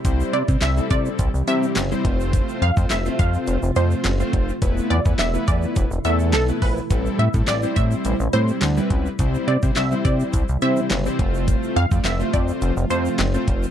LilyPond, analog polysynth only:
\new Staff \with { instrumentName = "Analog polysynth" } { \time 4/4 \key f \lydian \tempo 4 = 105 <g c' e' c''>8 r16 <g c' e' c''>8 <g c' e' a'>4 r16 <g c' e' g'>8 r16 <g c' e' c''>16 <a c' f' c''>8~ | <a c' f' c''>8 r16 <a c' f' c''>8 <a c' f' c''>4 r16 <a c' f' c''>8 r16 <a c' f' c''>8 r16 | <a b e' b'>8 r16 <a b e' b'>8 <a b e' b'>4 r16 <a b e' a'>8 r16 <a b e' b'>8 r16 | <g c' e' a'>8 r16 <g c' e' a'>8 <g c' e' c''>4 r16 <g c' e' c''>8 r16 <g c' e' b'>8 r16 |
<g c' e' c''>8 r16 <g c' e' c''>8 <g c' e' c''>4 r16 <g c' e' c''>8 r16 <g c' e' c''>16 <a c' f' c''>8~ | <a c' f' c''>8 r16 <a c' f' d''>8 <a c' f' c''>4 r16 <a c' f' c''>8 r16 <a c' f' c''>8 r16 | }